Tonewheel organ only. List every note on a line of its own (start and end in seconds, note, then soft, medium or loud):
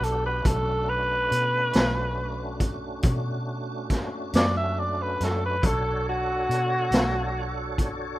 0.00 0.41 B3 medium
0.00 0.41 D4 medium
0.00 0.41 F#4 medium
0.00 0.42 G4 medium
0.42 5.57 A3 medium
0.42 5.57 C#4 medium
0.42 5.58 D4 medium
0.42 5.58 F#4 medium
5.62 8.19 D4 medium
5.62 8.19 F#4 medium
5.62 8.19 A4 medium
5.62 8.19 C#5 medium